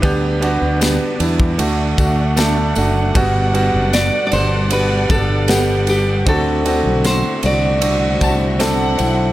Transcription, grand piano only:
<<
  \new Staff \with { instrumentName = "Grand piano" } { \time 4/4 \key g \major \tempo 4 = 77 <b d' g'>8 <b d' fis'>8 <b d' g'>8 <b d' e'>8 <a d' fis'>8 <a d' fis'>8 <a d' a'>8 <a d' fis'>8 | <g b fis'>8 <g b fis'>8 <g b fis'>8 <b, g g'>8 <g b fis'>8 <g b d'>8 <g b fis''>8 <g b g'>8 | <c' d' fis'>8 <c' d' fis'>8 <c' d' fis'>8 <c' d' fis'>8 <c' d' fis'>8 <c' d' fis'>8 <c' d' a'>8 <c' d' e'>8 | }
  \new Staff \with { instrumentName = "Grand piano" } { \clef bass \time 4/4 \key g \major d4. r8 d4. r8 | b,4. r2 r8 | d4. r2 r8 | }
>>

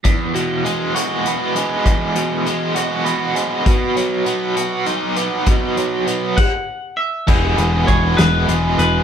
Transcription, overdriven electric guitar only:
\new Staff \with { instrumentName = "Overdriven electric guitar" } { \clef bass \time 6/8 \key e \major \tempo 4. = 66 e,8 b,8 gis8 fis'8 b8 gis8 | e,8 b,8 gis8 fis'8 b8 gis8 | b,8 fis8 b8 fis'8 dis'8 b8 | b,8 fis8 b8 r4. |
<e, b, e gis b gis'>8 <e, b, e gis b gis'>8 <e, b, e gis b gis'>8 <e, b, e gis b gis'>8 <e, b, e gis b gis'>4 | }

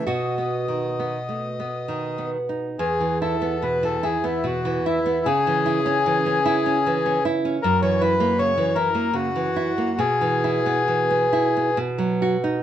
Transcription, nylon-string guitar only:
\new Staff \with { instrumentName = "Nylon-string guitar" } { \time 3/4 \key e \major \tempo 4 = 72 << { fis'2~ fis'8 r8 | r2. | r2. | r2. |
r2. | } \\ { \tuplet 3/2 { b,8 b8 dis8 b8 a8 b8 dis8 b8 dis'8 } | e,16 e16 e'16 b16 b,16 e16 e'16 b16 b,16 e16 e'16 b16 | cis16 e16 e'16 cis'16 e16 cis'16 e'16 cis'16 e16 cis'16 e'16 cis'16 | fis,16 e16 e'16 ais16 cis16 e16 e'16 ais16 cis16 e16 e'16 ais16 |
b,16 e16 e'16 b16 e16 b16 e'16 b16 b,16 fis16 fis'16 dis'16 | } >> }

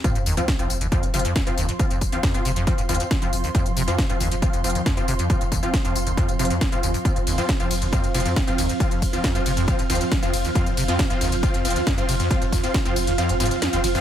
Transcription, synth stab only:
\new Staff \with { instrumentName = "Synth stab" } { \time 4/4 \key c \phrygian \tempo 4 = 137 <f c' f'>16 r8 <f c' f'>16 r16 <f c' f'>16 r8 <f c' f'>16 r16 <f c' f'>16 r8 <f c' f'>16 r8 | <f c' f'>16 r8 <f c' f'>16 r16 <f c' f'>16 r8 <f c' f'>16 r16 <f c' f'>16 r8 <f c' f'>16 r8 | <f c' f'>16 r8 <f c' f'>16 r16 <f c' f'>16 r8 <f c' f'>16 r16 <f c' f'>16 r8 <f c' f'>16 r8 | <f c' f'>16 r8 <f c' f'>16 r16 <f c' f'>16 r8 <f c' f'>16 r16 <f c' f'>16 r8 <f c' f'>16 r8 |
<f c' f'>16 r8 <f c' f'>16 r16 <f c' f'>16 r8 <f c' f'>16 r16 <f c' f'>16 r8 <f c' f'>16 r8 | <f c' f'>16 r8 <f c' f'>16 r16 <f c' f'>16 r8 <f c' f'>16 r16 <f c' f'>16 r8 <f c' f'>16 r8 | <f c' f'>16 r8 <f c' f'>16 r16 <f c' f'>16 r8 <f c' f'>16 r16 <f c' f'>16 r8 <f c' f'>16 r8 | <f c' f'>16 r8 <f c' f'>16 r16 <f c' f'>16 r8 <f c' f'>16 r16 <f c' f'>16 r8 <f c' f'>16 r16 <f c' f'>16 | }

